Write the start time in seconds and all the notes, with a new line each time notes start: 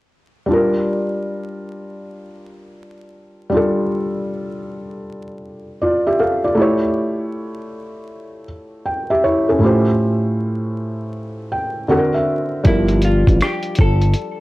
0.46 G3 D4
0.51 F4 A#4
3.50 G3 D4
3.54 F4 A4
5.81 F4 D5
6.07 G4 E5
6.20 A4 F5
6.44 F4 D5
6.55 A3 E4
6.59 G4 C#5
8.85 G5
9.10 G4 E5
9.24 E4 C#5
9.49 C#4 A4
9.58 A2 A3 E4
9.63 F4 G4 C5
11.52 G5
11.88 D3 C4 F#4 A4 F#5
11.98 A#4
12.14 E5
12.64 G1 F3 G3 D4 E4 A#4, kick, closed hi-hat
12.88 closed hi-hat
13.02 F4, closed hi-hat
13.27 A1, kick, closed hi-hat
13.41 G4, cross-stick, closed hi-hat
13.63 closed hi-hat
13.75 G1, kick, closed hi-hat
13.81 A4
14.02 closed hi-hat
14.14 closed hi-hat